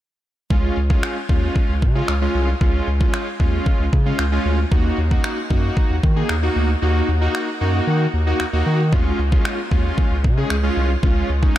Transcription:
0.50 sub bass C#2, analog polysynth G#3 C#4 F4, kick
0.77 sub bass C#2
0.90 analog polysynth G#3 C#4 F4, kick
1.03 finger snap
1.29 sub bass D#2, analog polysynth G#3 C#4 F4, kick
1.56 kick
1.69 sub bass C#2
1.82 sub bass C#3, kick
1.95 analog polysynth G#3 C#4 F4
2.08 sub bass C#2, finger snap
2.21 analog polysynth G#3 C#4 F4
2.35 sub bass C2
2.61 sub bass C#2, analog polysynth G#3 C#4 F4, kick
2.87 sub bass C#2
3.00 analog polysynth G#3 C#4 F4, kick
3.14 finger snap
3.40 sub bass D#2, analog polysynth G#3 C#4 F4, kick
3.66 kick
3.79 sub bass C#2
3.93 sub bass C#3, kick
4.06 analog polysynth G#3 C#4 F4
4.19 sub bass C#2, finger snap
4.32 analog polysynth G#3 C#4 F4
4.45 sub bass D2
4.71 sub bass D#2, analog polysynth A#3 D#4 F#4, kick
4.98 sub bass D#2
5.11 analog polysynth A#3 D#4 F#4, kick
5.24 finger snap
5.50 sub bass F#2, analog polysynth A#3 D#4 F#4, kick
5.77 kick
5.90 sub bass D#2
6.03 sub bass D#3, kick
6.16 analog polysynth A#3 D#4 G#4
6.29 sub bass D#2, finger snap
6.42 analog polysynth A#3 D#4 F#4
6.56 sub bass D2
6.82 sub bass D#2, analog polysynth A#3 D#4 F#4
7.09 sub bass D#2
7.21 analog polysynth A#3 D#4 F#4
7.35 finger snap
7.61 sub bass F#2, analog polysynth A#3 D#4 F#4
7.87 sub bass D#3
8.14 sub bass D#2
8.27 analog polysynth A#3 D#4 F#4
8.40 sub bass D#2, finger snap
8.53 sub bass D#2, analog polysynth A#3 D#4 F#4
8.66 sub bass D#3
8.92 sub bass C#2, analog polysynth G#3 C#4 F4, kick
9.19 sub bass C#2
9.32 analog polysynth G#3 C#4 F4, kick
9.45 finger snap
9.71 sub bass D#2, analog polysynth G#3 C#4 F4, kick
9.98 kick
10.11 sub bass C#2
10.24 sub bass C#3, kick
10.37 analog polysynth G#3 C#4 G#4
10.50 sub bass C#2, finger snap
10.63 analog polysynth G#3 C#4 F4
10.77 sub bass C2
11.03 sub bass C#2, analog polysynth G#3 C#4 F4, kick
11.29 sub bass C#2
11.42 analog polysynth G#3 C#4 D#4, kick

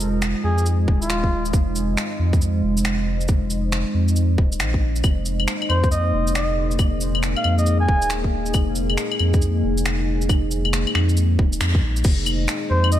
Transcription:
Already playing: sub bass F1, ambient pad G#3 D#4 F4 C5 D#5
0.00 shaker
0.22 finger snap, shaker
0.44 sub bass F2, muted trumpet G#4
0.58 shaker
0.66 shaker
0.88 sub bass D#1, kick
1.02 muted trumpet F4, shaker
1.10 finger snap, shaker
1.24 kick
1.45 shaker
1.53 sub bass F1, kick, shaker
1.76 shaker
1.97 finger snap, shaker
2.19 sub bass F2
2.33 kick, shaker
2.41 shaker
2.63 sub bass F1
2.77 shaker
2.85 finger snap, shaker
3.21 shaker
3.28 kick, shaker
3.50 shaker
3.72 finger snap, shaker
3.94 sub bass F2
4.08 shaker
4.16 shaker
4.38 sub bass D#1, kick
4.52 shaker
4.60 sub bass A#1, finger snap, shaker
4.74 kick
4.96 shaker
5.04 sub bass F1, ambient pad A#3, kick, claves, shaker
5.26 shaker
5.40 claves
5.48 finger snap, shaker
5.61 ambient pad G#4, claves
5.69 sub bass F2, muted trumpet C5, claves
5.84 kick, shaker
5.91 muted trumpet D#5, shaker
6.13 sub bass F1
6.27 shaker
6.35 muted trumpet D#5, finger snap, shaker
6.71 shaker
6.79 kick, claves, shaker
7.01 shaker
7.15 claves
7.23 finger snap, shaker
7.37 muted trumpet F5, claves
7.44 sub bass F2, claves
7.58 muted trumpet D#5, shaker
7.66 shaker
7.81 muted trumpet G#5
7.88 sub bass D#1, kick
8.02 shaker
8.10 finger snap, shaker
8.24 kick
8.46 shaker
8.54 sub bass F1, kick, claves, shaker
8.75 shaker
8.90 claves
8.98 finger snap, shaker
9.12 claves
9.19 sub bass F2, claves
9.34 kick, shaker
9.42 shaker
9.64 sub bass F1
9.78 shaker
9.86 finger snap, shaker
10.22 shaker
10.29 kick, claves, shaker
10.51 shaker
10.65 claves
10.73 finger snap, shaker
10.87 claves
10.95 sub bass F2, finger snap, claves
11.09 shaker
11.17 shaker
11.39 sub bass D#1, kick
11.53 shaker
11.61 sub bass F2, finger snap, shaker
11.75 kick
11.82 sub bass A#1
11.96 shaker
12.04 sub bass F1, ambient pad G#3, kick, crash, shaker
12.26 claves, shaker
12.45 ambient pad F4, finger snap, shaker
12.70 sub bass F2, muted trumpet C5
12.84 claves
12.92 muted trumpet D#5, shaker

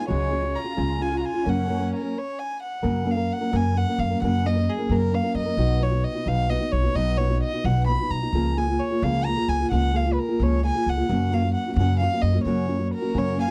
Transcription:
0.07 upright bass C#2, nylon-string guitar C#3 F#3 C#4 F#4 G#4, violin section G#3, violin C#5
0.31 nylon-string guitar F#3 C#4 F#4 G#4
0.42 nylon-string guitar F#4 G#4
0.55 violin section F4, violin A#5
0.64 nylon-string guitar C#4 F#4 G#4
0.77 upright bass C#2, nylon-string guitar C#3 G#3 C#4 F4 G#4
0.99 nylon-string guitar G#3 C#4 F4 G#4, violin section F4, violin G#5
1.11 nylon-string guitar C#4 F4 G#4
1.17 violin section F#4, violin A#5
1.21 violin section F4, violin G#5
1.34 nylon-string guitar C#4 F4 G#4
1.44 nylon-string guitar F#2 C#3 F#3 A#3 C#4 A#4, upright bass F#2, violin section C#4
1.49 violin F#5
1.68 nylon-string guitar F#3 A#3 C#4 A#4
1.80 nylon-string guitar F#3 A#3 C#4 A#4
1.95 violin A#4
2.02 nylon-string guitar F#3 A#3 C#4 A#4
2.18 violin C#5
2.39 violin G#5
2.62 violin F#5
2.82 nylon-string guitar F#2 C#3 F#3 A#3 C#4 A#4, upright bass F#2
3.05 nylon-string guitar F#3 A#3 C#4 A#4
3.10 violin F5
3.17 nylon-string guitar F#3 A#3 C#4 A#4
3.32 violin F#5
3.41 nylon-string guitar F#3 A#3 C#4 A#4
3.51 nylon-string guitar F#2 C#3 F#3 A#3 C#4 A#4, upright bass F#2
3.56 violin G#5
3.76 nylon-string guitar F#3 A#3 C#4 A#4, violin F#5
3.89 nylon-string guitar F#3 A#3 C#4 A#4
3.98 upright bass F#2, violin F5
4.10 nylon-string guitar F#3 A#3 C#4 A#4
4.21 upright bass F#2, nylon-string guitar F#2 C#3 F#3 A#3 C#4 A#4, violin F#5
4.45 nylon-string guitar F#3 A#3 C#4 A#4, violin D#5
4.56 nylon-string guitar F#3 A#3 C#4 A#4
4.69 violin G#4
4.78 nylon-string guitar F#3 A#3 C#4 A#4
4.90 upright bass F#2, nylon-string guitar F#2 C#3 F#3 A#3 C#4 A#4, violin A#4
5.12 nylon-string guitar F#3 A#3 C#4 A#4, violin F5
5.23 nylon-string guitar F#3 A#3 C#4 A#4
5.35 upright bass F#2, violin D#5
5.46 nylon-string guitar F#3 A#3 C#4 A#4
5.57 upright bass B1, nylon-string guitar B2 F#3 B3 D#4 F#4
5.80 nylon-string guitar F#3 B3 D#4 F#4, violin C#5
5.91 nylon-string guitar B3 D#4 F#4
6.04 violin D#5
6.14 nylon-string guitar B3 D#4 F#4
6.26 upright bass B1, nylon-string guitar B2 F#3 B3 D#4 F#4, violin F5
6.49 nylon-string guitar F#3 B3 D#4 F#4, violin D#5
6.60 nylon-string guitar B3 D#4 F#4
6.72 upright bass B1, violin C#5
6.83 nylon-string guitar B3 D#4 F#4
6.95 upright bass B1, nylon-string guitar B2 F#3 B3 D#4 F#4, violin D#5
7.17 nylon-string guitar F#3 B3 D#4 F#4, violin C#5
7.30 nylon-string guitar B3 D#4 F#4
7.43 violin D#5
7.54 nylon-string guitar B3 D#4 F#4
7.64 upright bass B1, nylon-string guitar B2 F#3 B3 D#4 F#4, violin F#5
7.87 nylon-string guitar F#3 B3 D#4 F#4, violin B5
8.00 nylon-string guitar B3 D#4 F#4
8.10 upright bass B1, violin A#5
8.22 nylon-string guitar B3 D#4 F#4
8.33 upright bass C#2, nylon-string guitar C#3 F3 A#3 F4 G#4
8.56 nylon-string guitar F3 A#3 F4 G#4, violin G#5
8.68 nylon-string guitar A#3 F4 G#4
8.79 violin C#5
8.91 nylon-string guitar A#3 F4 G#4
9.02 upright bass C#2, nylon-string guitar C#3 F3 A#3 F4 G#4, violin F5
9.25 nylon-string guitar F3 A#3 F4 G#4, violin A#5
9.37 nylon-string guitar A#3 F4 G#4
9.48 upright bass C#2, violin G#5
9.60 nylon-string guitar A#3 F4 G#4
9.71 upright bass C#2, nylon-string guitar C#3 F3 A#3 F4 G#4, violin F#5
9.93 nylon-string guitar F3 A#3 F4 G#4, violin F5
10.04 nylon-string guitar A#3 F4 G#4
10.13 violin B4
10.19 violin A#4
10.29 nylon-string guitar A#3 F4 G#4
10.40 upright bass C#2, nylon-string guitar C#3 F3 A#3 F4 G#4, violin C#5
10.63 nylon-string guitar A#3 F4, violin G#5
10.75 nylon-string guitar A#3 F4 G#4
10.86 upright bass C#2, violin F#5
10.97 nylon-string guitar A#3 F4 G#4
11.08 nylon-string guitar F#2 C#3 F#3 A#3 C#4 F#4, upright bass F#2
11.32 nylon-string guitar F#3 A#3 C#4 F#4, violin F5
11.45 nylon-string guitar F#3 F#4
11.54 violin F#5
11.68 nylon-string guitar F#3 A#3 C#4 F#4
11.76 upright bass F#2, nylon-string guitar F#2 C#3 F#3 A#3 C#4 F#4, violin F#5
12.00 nylon-string guitar F#3 A#3 C#4 F#4, violin F5
12.13 nylon-string guitar F#3 A#3 C#4 F#4
12.21 upright bass F#2, violin D#5
12.35 nylon-string guitar F#3 A#3 C#4 F#4
12.44 upright bass F#2, nylon-string guitar F#2 C#3 F#3 A#3 C#4 F#4, violin C#5
12.68 nylon-string guitar F#3 A#3 C#4 F#4
12.79 nylon-string guitar F#3 A#3 F#4
12.94 violin section F#4, violin A#4
13.02 nylon-string guitar F#3 A#3 C#4 F#4
13.14 nylon-string guitar F#2 C#3 F#3 A#3 C#4 F#4, upright bass F#2
13.18 violin section A#4, violin C#5
13.37 nylon-string guitar F#3 A#3 C#4 F#4, violin G#5
13.41 violin section F5

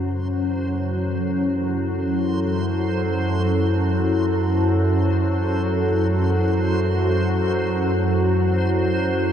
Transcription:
Already playing: synth drone F#2 F#3, analog synth pad F#3 C#4 E4 A4, synth texture C5
3.93 analog synth pad F#4

